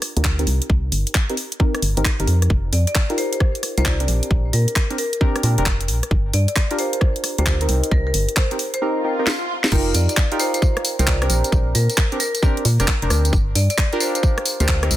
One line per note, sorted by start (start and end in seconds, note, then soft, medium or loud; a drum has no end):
0.00 0.13 D4 medium
0.00 0.13 F4 medium
0.00 0.13 G4 medium
0.00 0.13 A#4 loud
0.00 cross-stick soft
0.00 open hi-hat loud
0.17 0.46 D2 loud
0.17 0.36 D4 medium
0.17 0.36 F4 medium
0.17 0.36 G4 medium
0.17 0.36 A#4 medium
0.17 closed hi-hat medium
0.24 kick loud
0.24 clap loud
0.39 1.26 C4 medium
0.39 1.26 D#4 medium
0.39 1.26 G4 medium
0.39 1.26 A#4 medium
0.39 closed hi-hat soft
0.47 0.60 C2 medium
0.47 open hi-hat medium
0.62 closed hi-hat medium
0.70 0.90 C2 medium
0.70 kick loud
0.92 1.05 G1 medium
0.92 open hi-hat medium
1.07 closed hi-hat medium
1.15 kick loud
1.15 clap loud
1.29 1.35 C4 medium
1.29 1.35 D#4 medium
1.29 1.35 G4 medium
1.29 1.35 A#4 medium
1.29 closed hi-hat soft
1.37 open hi-hat medium
1.52 closed hi-hat medium
1.60 1.81 C4 medium
1.60 1.81 D#4 medium
1.60 1.81 G4 medium
1.60 1.81 A#4 loud
1.60 kick loud
1.75 cross-stick medium
1.75 closed hi-hat soft
1.82 1.95 G1 loud
1.82 open hi-hat loud
1.97 2.04 G1 medium
1.97 2.07 C4 medium
1.97 2.07 D#4 medium
1.97 2.07 G4 medium
1.97 2.07 A#4 loud
1.97 closed hi-hat medium
2.05 kick loud
2.05 clap loud
2.20 2.27 G1 medium
2.20 2.49 C4 medium
2.20 2.49 D#4 medium
2.20 2.49 G4 medium
2.20 2.49 A#4 medium
2.20 closed hi-hat soft
2.27 2.48 F2 loud
2.27 open hi-hat medium
2.42 cross-stick soft
2.42 closed hi-hat medium
2.50 2.71 F1 medium
2.50 kick loud
2.73 2.86 F2 medium
2.73 2.82 D5 medium
2.73 open hi-hat medium
2.87 2.92 D5 medium
2.87 closed hi-hat medium
2.95 kick loud
2.95 clap loud
3.10 3.74 D#4 medium
3.10 3.74 F4 medium
3.10 3.74 G4 medium
3.10 3.74 A#4 loud
3.10 closed hi-hat soft
3.18 3.27 C5 medium
3.18 open hi-hat medium
3.33 3.38 C5 medium
3.33 closed hi-hat medium
3.40 kick loud
3.40 cross-stick medium
3.55 closed hi-hat soft
3.63 cross-stick soft
3.63 open hi-hat loud
3.77 4.07 C2 loud
3.77 3.97 D#4 medium
3.77 3.97 F4 medium
3.77 3.97 G4 medium
3.77 3.97 A#4 medium
3.77 3.84 C5 medium
3.77 closed hi-hat medium
3.85 4.01 D5 medium
3.85 kick loud
3.85 clap loud
4.00 4.87 C4 medium
4.00 4.87 D4 medium
4.00 4.87 G4 medium
4.00 4.87 A#4 medium
4.00 closed hi-hat soft
4.08 4.21 A#1 medium
4.08 open hi-hat medium
4.23 closed hi-hat medium
4.31 4.51 A#1 medium
4.31 kick loud
4.53 4.66 A#2 medium
4.53 4.68 A#4 medium
4.53 open hi-hat medium
4.68 closed hi-hat medium
4.76 kick loud
4.76 clap loud
4.90 4.96 C4 medium
4.90 4.96 D4 medium
4.90 4.96 G4 medium
4.90 4.96 A#4 medium
4.90 closed hi-hat soft
4.98 5.63 A#4 medium
4.98 open hi-hat medium
5.13 closed hi-hat medium
5.21 5.42 C4 medium
5.21 5.42 D4 medium
5.21 5.42 G4 medium
5.21 5.42 A#4 loud
5.21 kick loud
5.36 cross-stick medium
5.36 closed hi-hat soft
5.43 5.56 A#2 loud
5.43 5.55 C4 medium
5.43 5.55 D4 medium
5.43 5.55 G4 medium
5.43 5.55 A#4 medium
5.43 open hi-hat loud
5.58 5.90 F1 medium
5.58 5.64 C4 medium
5.58 5.64 D4 medium
5.58 5.64 G4 medium
5.58 5.64 A#4 loud
5.58 closed hi-hat medium
5.66 kick loud
5.66 clap loud
5.81 closed hi-hat medium
5.88 6.02 A#1 medium
5.88 open hi-hat medium
6.03 cross-stick soft
6.03 closed hi-hat medium
6.11 6.32 G1 medium
6.11 kick loud
6.33 6.47 G2 medium
6.33 6.43 D5 medium
6.33 open hi-hat loud
6.48 6.53 D5 medium
6.48 closed hi-hat medium
6.56 kick loud
6.56 clap loud
6.71 7.35 D4 medium
6.71 7.35 F4 medium
6.71 7.35 G4 medium
6.71 7.35 A#4 loud
6.71 closed hi-hat soft
6.79 6.88 C5 medium
6.79 open hi-hat medium
6.93 6.98 C5 medium
6.93 closed hi-hat medium
7.01 kick loud
7.01 cross-stick medium
7.16 closed hi-hat soft
7.24 cross-stick soft
7.24 open hi-hat loud
7.38 7.68 D2 loud
7.38 7.58 D4 medium
7.38 7.58 F4 medium
7.38 7.58 G4 medium
7.38 7.58 A#4 medium
7.38 7.45 C5 medium
7.38 closed hi-hat medium
7.46 kick loud
7.46 clap loud
7.61 8.48 C4 medium
7.61 8.48 D#4 medium
7.61 8.48 G4 medium
7.61 8.48 A#4 medium
7.61 closed hi-hat medium
7.69 7.82 C2 medium
7.69 open hi-hat loud
7.84 closed hi-hat medium
7.91 8.12 C2 loud
7.91 8.04 A#4 medium
7.91 kick loud
8.07 8.15 A#4 medium
8.14 8.27 G1 medium
8.14 open hi-hat loud
8.29 closed hi-hat medium
8.36 8.52 C5 medium
8.36 kick loud
8.36 clap loud
8.51 8.57 C4 medium
8.51 8.57 D#4 medium
8.51 8.57 G4 medium
8.51 8.57 A#4 medium
8.51 closed hi-hat soft
8.59 open hi-hat loud
8.74 8.82 C5 medium
8.74 closed hi-hat medium
8.82 9.02 C4 medium
8.82 9.02 D#4 medium
8.82 9.02 G4 medium
8.82 9.02 A#4 loud
8.82 swell medium
9.04 9.15 C4 medium
9.04 9.15 D#4 medium
9.04 9.15 G4 medium
9.04 9.16 A#4 medium
9.19 9.25 C4 medium
9.19 9.25 D#4 medium
9.19 9.25 G4 medium
9.19 9.25 A#4 medium
9.27 snare loud
9.64 snare medium
9.72 9.93 F1 loud
9.72 10.26 D#4 loud
9.72 10.26 F4 medium
9.72 10.26 G4 medium
9.72 10.26 A#4 loud
9.72 kick loud
9.72 crash loud
9.72 tambourine soft
9.95 10.08 F2 medium
9.95 10.04 D5 medium
9.95 open hi-hat loud
9.95 tambourine medium
10.09 10.14 D5 medium
10.09 closed hi-hat medium
10.09 tambourine soft
10.17 kick loud
10.17 clap loud
10.17 tambourine soft
10.32 10.96 D#4 loud
10.32 10.96 F4 medium
10.32 10.96 G4 medium
10.32 10.96 A#4 loud
10.32 closed hi-hat soft
10.40 10.49 C5 medium
10.40 open hi-hat medium
10.40 tambourine medium
10.54 10.59 C5 medium
10.54 closed hi-hat medium
10.54 tambourine soft
10.62 kick loud
10.62 tambourine soft
10.77 cross-stick medium
10.77 closed hi-hat soft
10.85 open hi-hat loud
10.85 tambourine medium
10.99 11.28 C2 loud
10.99 11.18 D#4 medium
10.99 11.18 F4 medium
10.99 11.18 G4 medium
10.99 11.18 A#4 medium
10.99 11.06 C5 medium
10.99 closed hi-hat medium
10.99 tambourine soft
11.07 11.22 D5 medium
11.07 kick loud
11.07 clap loud
11.07 tambourine soft
11.22 12.09 C4 medium
11.22 12.09 D4 medium
11.22 12.09 G4 medium
11.22 12.09 A#4 medium
11.22 cross-stick medium
11.22 closed hi-hat soft
11.30 11.43 A#1 medium
11.30 open hi-hat loud
11.30 tambourine medium
11.44 closed hi-hat medium
11.44 tambourine soft
11.52 11.73 A#1 loud
11.52 kick loud
11.52 tambourine soft
11.75 11.88 A#2 medium
11.75 11.90 A#4 medium
11.75 open hi-hat loud
11.75 tambourine medium
11.90 closed hi-hat medium
11.90 tambourine soft
11.97 kick loud
11.97 clap loud
12.12 12.18 C4 medium
12.12 12.18 D4 medium
12.12 12.18 G4 medium
12.12 12.18 A#4 medium
12.12 closed hi-hat soft
12.20 12.85 A#4 medium
12.20 open hi-hat medium
12.20 tambourine medium
12.35 closed hi-hat medium
12.35 tambourine soft
12.43 12.63 C4 medium
12.43 12.63 D4 medium
12.43 12.63 G4 medium
12.43 12.63 A#4 loud
12.43 kick loud
12.43 tambourine soft
12.57 closed hi-hat soft
12.65 12.78 A#2 loud
12.65 open hi-hat loud
12.65 tambourine medium
12.80 12.87 F1 loud
12.80 12.89 C4 medium
12.80 12.89 D4 medium
12.80 12.89 G4 medium
12.80 12.89 A#4 loud
12.80 cross-stick soft
12.80 closed hi-hat medium
12.80 tambourine soft
12.88 kick loud
12.88 clap loud
12.88 tambourine soft
13.02 13.09 F1 medium
13.02 13.32 C4 medium
13.02 13.32 D4 medium
13.02 13.32 G4 medium
13.02 13.32 A#4 medium
13.02 closed hi-hat soft
13.10 13.31 D2 loud
13.10 cross-stick medium
13.10 open hi-hat medium
13.10 tambourine medium
13.25 closed hi-hat medium
13.25 tambourine soft
13.33 13.54 G1 loud
13.33 kick loud
13.33 tambourine soft
13.55 13.68 G2 medium
13.55 13.65 D5 medium
13.55 open hi-hat loud
13.55 tambourine medium
13.70 13.75 D5 medium
13.70 closed hi-hat medium
13.70 tambourine soft
13.78 kick loud
13.78 clap loud
13.78 tambourine soft
13.93 14.57 D4 loud
13.93 14.57 F4 medium
13.93 14.57 G4 medium
13.93 14.57 A#4 loud
13.93 closed hi-hat soft
14.00 14.10 C5 medium
14.00 open hi-hat medium
14.00 tambourine medium
14.15 14.20 C5 medium
14.15 closed hi-hat medium
14.15 tambourine soft
14.23 kick loud
14.23 tambourine soft
14.38 cross-stick medium
14.38 closed hi-hat soft
14.46 open hi-hat loud
14.46 tambourine medium
14.60 14.89 D2 loud
14.60 14.79 D4 medium
14.60 14.79 F4 medium
14.60 14.79 G4 medium
14.60 14.79 A#4 medium
14.60 14.67 C5 medium
14.60 closed hi-hat medium
14.60 tambourine soft
14.68 kick loud
14.68 clap loud
14.68 tambourine soft
14.83 14.97 C4 medium
14.83 14.97 D#4 medium
14.83 14.97 G4 medium
14.83 14.97 A#4 medium
14.83 cross-stick medium
14.83 closed hi-hat medium
14.91 14.97 C2 medium
14.91 open hi-hat loud
14.91 tambourine medium